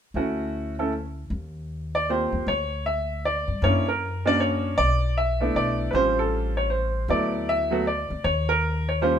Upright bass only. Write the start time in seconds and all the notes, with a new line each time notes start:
0.14 D2
1.30 D#2
2.32 D#2
2.47 D2
3.48 G2
3.62 F#2
4.78 B1
5.55 B1
5.93 A1
7.08 D2
8.10 D2
8.24 D#2